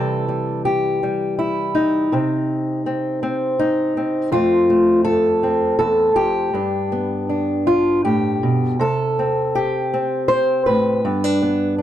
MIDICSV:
0, 0, Header, 1, 2, 480
1, 0, Start_track
1, 0, Key_signature, 0, "major"
1, 0, Tempo, 738007
1, 1383, Time_signature, 3, 2, 24, 8
1, 4255, Tempo, 746269
1, 7650, End_track
2, 0, Start_track
2, 0, Title_t, "Steel-string acoustic guitar"
2, 0, Program_c, 0, 25
2, 0, Note_on_c, 0, 48, 62
2, 0, Note_on_c, 0, 52, 39
2, 0, Note_on_c, 0, 55, 41
2, 0, Note_on_c, 0, 69, 71
2, 177, Note_off_c, 0, 55, 0
2, 185, Note_on_c, 0, 55, 37
2, 421, Note_off_c, 0, 69, 0
2, 424, Note_on_c, 0, 67, 65
2, 662, Note_off_c, 0, 55, 0
2, 670, Note_on_c, 0, 55, 42
2, 899, Note_off_c, 0, 67, 0
2, 902, Note_on_c, 0, 64, 65
2, 1136, Note_on_c, 0, 63, 71
2, 1352, Note_off_c, 0, 48, 0
2, 1355, Note_off_c, 0, 52, 0
2, 1381, Note_on_c, 0, 48, 56
2, 1382, Note_off_c, 0, 55, 0
2, 1382, Note_off_c, 0, 64, 0
2, 1385, Note_on_c, 0, 60, 41
2, 1859, Note_off_c, 0, 60, 0
2, 1862, Note_on_c, 0, 60, 43
2, 2097, Note_off_c, 0, 60, 0
2, 2099, Note_on_c, 0, 60, 46
2, 2330, Note_off_c, 0, 63, 0
2, 2338, Note_on_c, 0, 63, 75
2, 2575, Note_off_c, 0, 60, 0
2, 2582, Note_on_c, 0, 60, 40
2, 2787, Note_off_c, 0, 48, 0
2, 2790, Note_off_c, 0, 60, 0
2, 2808, Note_on_c, 0, 41, 64
2, 2812, Note_on_c, 0, 65, 77
2, 2816, Note_off_c, 0, 63, 0
2, 2818, Note_on_c, 0, 57, 44
2, 2824, Note_on_c, 0, 60, 44
2, 3048, Note_off_c, 0, 57, 0
2, 3056, Note_on_c, 0, 57, 44
2, 3279, Note_off_c, 0, 65, 0
2, 3282, Note_on_c, 0, 69, 89
2, 3525, Note_off_c, 0, 60, 0
2, 3533, Note_on_c, 0, 60, 48
2, 3757, Note_off_c, 0, 69, 0
2, 3764, Note_on_c, 0, 69, 82
2, 3767, Note_off_c, 0, 41, 0
2, 3770, Note_on_c, 0, 40, 56
2, 4000, Note_off_c, 0, 40, 0
2, 4002, Note_off_c, 0, 69, 0
2, 4003, Note_on_c, 0, 41, 54
2, 4005, Note_on_c, 0, 67, 83
2, 4227, Note_off_c, 0, 60, 0
2, 4228, Note_off_c, 0, 57, 0
2, 4247, Note_off_c, 0, 41, 0
2, 4250, Note_on_c, 0, 43, 64
2, 4257, Note_on_c, 0, 62, 41
2, 4498, Note_on_c, 0, 59, 41
2, 4731, Note_off_c, 0, 62, 0
2, 4738, Note_on_c, 0, 62, 41
2, 4975, Note_off_c, 0, 67, 0
2, 4980, Note_on_c, 0, 65, 76
2, 5220, Note_off_c, 0, 65, 0
2, 5222, Note_on_c, 0, 67, 69
2, 5227, Note_on_c, 0, 45, 49
2, 5467, Note_off_c, 0, 45, 0
2, 5469, Note_on_c, 0, 47, 52
2, 5676, Note_off_c, 0, 43, 0
2, 5680, Note_off_c, 0, 59, 0
2, 5680, Note_off_c, 0, 62, 0
2, 5703, Note_on_c, 0, 48, 59
2, 5708, Note_off_c, 0, 67, 0
2, 5710, Note_off_c, 0, 47, 0
2, 5712, Note_on_c, 0, 69, 78
2, 5957, Note_on_c, 0, 60, 34
2, 6191, Note_on_c, 0, 67, 76
2, 6430, Note_off_c, 0, 60, 0
2, 6437, Note_on_c, 0, 60, 44
2, 6658, Note_off_c, 0, 69, 0
2, 6660, Note_on_c, 0, 72, 86
2, 6902, Note_off_c, 0, 72, 0
2, 6904, Note_on_c, 0, 71, 77
2, 6918, Note_on_c, 0, 45, 49
2, 7117, Note_off_c, 0, 48, 0
2, 7123, Note_off_c, 0, 60, 0
2, 7148, Note_off_c, 0, 67, 0
2, 7152, Note_off_c, 0, 45, 0
2, 7152, Note_on_c, 0, 43, 61
2, 7154, Note_on_c, 0, 59, 43
2, 7276, Note_off_c, 0, 59, 0
2, 7276, Note_on_c, 0, 62, 34
2, 7393, Note_on_c, 0, 59, 40
2, 7619, Note_off_c, 0, 62, 0
2, 7627, Note_on_c, 0, 62, 41
2, 7650, Note_off_c, 0, 43, 0
2, 7650, Note_off_c, 0, 59, 0
2, 7650, Note_off_c, 0, 62, 0
2, 7650, Note_off_c, 0, 71, 0
2, 7650, End_track
0, 0, End_of_file